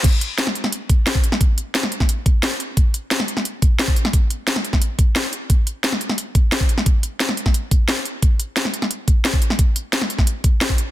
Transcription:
\new DrumStaff \with { instrumentName = "Drums" } \drummode { \time 4/4 \tempo 4 = 176 <cymc hh bd>8 hh8 <hh sn>16 sn16 hh16 sn16 hh8 <hh bd>8 <hh sn>16 bd16 hh16 sn16 | <hh bd>8 hh8 <hh sn>16 sn16 hh16 <bd sn>16 hh8 <hh bd>8 <hh sn>8 hh8 | <hh bd>8 hh8 <hh sn>16 sn16 hh16 sn16 hh8 <hh bd>8 <hh sn>16 bd16 hh16 sn16 | <hh bd>8 hh8 <hh sn>16 sn16 hh16 <bd sn>16 hh8 <hh bd>8 <hh sn>8 hh8 |
<hh bd>8 hh8 <hh sn>16 sn16 hh16 sn16 hh8 <hh bd>8 <hh sn>16 bd16 hh16 sn16 | <hh bd>8 hh8 <hh sn>16 sn16 hh16 <bd sn>16 hh8 <hh bd>8 <hh sn>8 hh8 | <hh bd>8 hh8 <hh sn>16 sn16 hh16 sn16 hh8 <hh bd>8 <hh sn>16 bd16 hh16 sn16 | <hh bd>8 hh8 <hh sn>16 sn16 hh16 <bd sn>16 hh8 <hh bd>8 <hh sn>16 bd16 hh8 | }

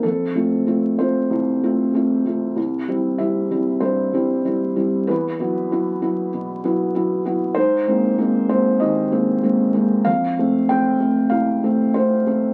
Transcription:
<<
  \new Staff \with { instrumentName = "Felt piano" } { \time 4/4 \key f \minor \tempo 4 = 96 a'4. c''2 r8 | r4 e''4 c''2 | b'2.~ b'8 r8 | c''4. c''8 ees''2 |
f''4 g''4 f''4 c''4 | }
  \new Staff \with { instrumentName = "Felt piano" } { \time 4/4 \key f \minor f,8 <a c' f'>8 <a c' f'>8 <a c' f'>8 c,8 <a c' f'>8 <a c' f'>8 <a c' f'>8 | c,8 <g c' e'>8 <g c' e'>8 <g c' e'>8 g,8 <g c' e'>8 <g c' e'>8 <g c' e'>8 | e,8 <fis b e'>8 <fis b e'>8 <fis b e'>8 b,8 <fis b e'>8 <fis b e'>8 <fis b e'>8 | aes,8 <aes bes c'>8 <aes bes c'>8 <aes bes c'>8 ees,8 <aes bes c'>8 <aes bes c'>8 <aes bes c'>8 |
f,8 <a c'>8 <a c'>8 <a c'>8 c,8 <a c'>8 <a c'>8 <a c'>8 | }
>>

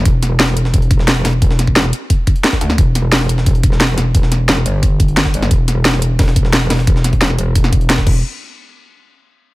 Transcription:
<<
  \new Staff \with { instrumentName = "Wobble bass" } { \clef bass \time 4/4 \key e \minor \tempo 4 = 176 e,,1 | e,,4. r2 d,8 | e,,1 | e,,4. g,,2~ g,,8 |
e,,1 | e,,4. e,,2 e,,8 | r1 | }
  \new DrumStaff \with { instrumentName = "Drums" } \drummode { \time 4/4 <hh bd>8 <hh sn>8 <hh hho sn>16 sn16 hh16 sn16 <hh bd>16 hh16 <hh bd>16 sn16 <hh sn>16 hh16 <hh hho sn>8 | <hh bd>16 sn16 <hh sn>16 bd16 <hh sn>16 sn16 hh8 <hh bd>8 <hh bd>16 hh16 <hh hho sn>16 <bd sn>16 hh16 sn16 | <hh bd>8 <hh sn>8 <hh hho sn>16 sn16 hh16 sn16 <hh bd>16 hh16 <hh bd>16 sn16 <hh sn>16 hh16 <hh sn>8 | <hh bd>16 sn16 <hh sn>8 <hh sn>16 sn16 hh8 <hh bd>8 <hh bd>16 hh16 <hh sn>16 <bd sn>16 hh16 <hh sn>16 |
<hh bd>8 <hh sn>8 <hh hho sn>16 sn16 hh8 <hh hho bd sn>16 sn16 <hh bd>16 sn16 <hh sn>16 hh16 <hh hho sn>16 sn16 | <hh bd>16 sn16 <hh sn>16 <hh bd>16 <hh sn>16 sn16 hh8 <hh bd>16 sn16 <hh bd>16 hh16 <hh sn>16 <bd sn>16 <cymc bd>8 | r4 r4 r4 r4 | }
>>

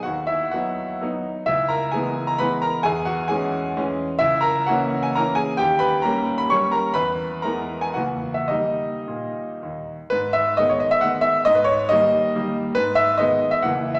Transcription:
<<
  \new Staff \with { instrumentName = "Grand piano" } { \time 3/4 \key cis \dorian \tempo 4 = 132 <fis' fis''>8 <e' e''>8 <fis' fis''>4. r8 | <e' e''>8 <ais' ais''>8 <gis' gis''>8. ais''16 <b' b''>8 <ais' ais''>8 | <gis' gis''>8 <fis' fis''>8 <gis' gis''>4. r8 | \key gis \minor <e' e''>8 <ais' ais''>8 <fis' fis''>8. gis''16 <ais' ais''>8 <gis' gis''>8 |
<g' g''>8 <b' b''>8 <ais' ais''>8. b''16 <cis'' cis'''>8 <ais' ais''>8 | <b' b''>4 <ais' ais''>8. gis''16 <fis' fis''>8. e''16 | <dis' dis''>2~ <dis' dis''>8 r8 | b'8 e''8 dis''16 cis''16 dis''16 e''16 fis''8 e''8 |
dis''16 b'16 cis''8 dis''4. r8 | b'8 e''8 dis''8. e''16 fis''8. e''16 | }
  \new Staff \with { instrumentName = "Grand piano" } { \clef bass \time 3/4 \key cis \dorian dis,4 <fis b dis'>4 <fis b dis'>4 | cis,4 <e gis b>4 <e gis b>4 | e,4 <e gis cis'>4 <e gis cis'>4 | \key gis \minor cis,4 <e ais cis'>4 <e ais cis'>4 |
dis,4 <g ais cis'>4 <g ais cis'>4 | e,4 <e gis b>4 <cis, e ais>4 | <dis g ais>4 ais,4 dis,4 | gis,4 <dis gis b>4 <dis gis b>4 |
gis,4 <dis g ais>4 <dis g ais>4 | gis,4 <dis gis b>4 <cis, e ais e'>4 | }
>>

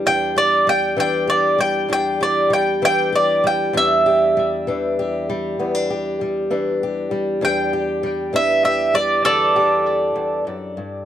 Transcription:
<<
  \new Staff \with { instrumentName = "Mandolin" } { \time 12/8 \key e \minor \tempo 4. = 65 g''8 d''8 g''8 g''8 d''8 g''8 g''8 d''8 g''8 g''8 d''8 g''8 | e''2. r2. | g''4. e''8 e''8 d''8 <a' d''>2 r4 | }
  \new Staff \with { instrumentName = "Steel-string acoustic guitar" } { \clef bass \time 12/8 \key e \minor << { <g d'>8 g'8 g8 d'8 g'8 g8 d'8 g'8 g8 d'8 g'8 g8 | d'8 g'8 g8 d'8 g'8 g8 b16 d'16 g'8 g8 d'8 g'8 g8 | d'8 g'8 g8 d'8 g'8 g8 d'8 g'2~ g'8 | } \\ { e,4. e4. e,4. e4. | e,4. e4. e,4. e4. | e,4. e4. e,4. e,8 fis,8 g,8 | } >> }
>>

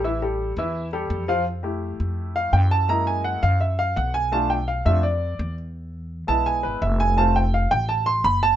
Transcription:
<<
  \new Staff \with { instrumentName = "Upright piano" } { \time 4/4 \key f \lydian \tempo 4 = 168 << { <e e' e''>8 <g g' a'>4 <e e' e''>4 <g g' a'>4 <f f' f''>8 | r2 r8 f''8 g''8 a''8 | ais''8 gis''8 fis''8 f''8 e''8 f''8 fis''8 gis''8 | a''8 g''8 f''8 e''8 d''4. r8 |
r4. a''8 gis''8 b'8 e''8 gis''8 | a''8 g''8 f''8 g''8 a''8 c'''8 b''8 a''8 | } \\ { r1 | r8 <a e' g'>2.~ <a e' g'>8 | <gis ais e'>4. r2 r8 | <a d' f'>8 r4 <a d' f'>8 r2 |
r4. <gis b e'>2~ <gis b e'>8 | <a c' f'>8 r2. r8 | } >> }
  \new Staff \with { instrumentName = "Upright bass" } { \clef bass \time 4/4 \key f \lydian a,,4. e,4. f,4~ | f,4. f,4. fis,4~ | fis,4. fis,4. b,,4~ | b,,4. f,4. e,4~ |
e,4. b,,4 gis,,8 f,,4~ | f,,4. a,,4. fis,,4 | }
>>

